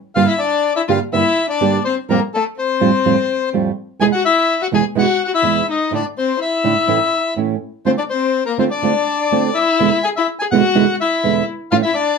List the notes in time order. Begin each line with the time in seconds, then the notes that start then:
0.15 G2 D3 G3 A#3 D4 F4 G4 F5
0.27 E4 E5
0.39 D4 D5
0.76 E4 E5
0.88 G2 D3 G3 A#3 D4 F4 G4 F5
1.12 G2 D3 G3 A#3 D4 E4 G4 E5
1.50 D4 D5
1.60 G2 D3 G3 A#3 D4 G4
1.85 C4 C5
2.09 F2 A2 F3 G3 A#3 C4 F4 A#4
2.34 A3 A4
2.59 C4 C5
2.80 F2 A2 F3 G3 C4 F4
3.05 F2 A2 F3 G3 C4 F4
3.53 F2 A2 F3 G3 C4 F4
3.99 E2 B2 E3 G#3 B3 E4 G#4 G#5
4.12 F#4 F#5
4.25 E4 E5
4.62 F#4 F#5
4.71 E2 B2 E3 G#3 B3 E4 G#4 G#5
4.95 E2 B2 E3 G#3 B3 E4 F#5
5.00 F#4
5.24 F#4 F#5
5.34 E4 E5
5.42 E2 B2 E3 G#3 B3 E4
5.70 D#4 D#5
5.91 A2 D3 A3 D4 E4
5.95 D5
6.18 C4 C5
6.41 E4 E5
6.64 A2 D3 A3 D4 E4
6.88 A2 E3 A3 C#4 E4
7.36 A2 E3 A3 C#4 E4
7.85 D3 A3 C4 F4 C5
7.98 D4 D5
8.10 C4 C5
8.46 A#3 A#4
8.58 D3 A3 C4 F4 C5
8.71 D4 D5
8.82 D3 A3 C4 F4
9.31 D3 A3 C4 F4
9.55 E4 E5
9.80 E2 B2 D3 G#3 B3 E4
10.03 G#4 G#5
10.16 E4 E5
10.39 G#4 G#5
10.51 E2 B2 D3 G#3 B3 E4 F#4 F#5
10.75 E2 B2 D3 G#3 B3 E4
11.00 E4 E5
11.23 E2 B2 D3 G#3 B3 E4
11.71 A2 E3 A3 C#4 E4 F4 F5
11.82 E4 E5
11.94 D4 D5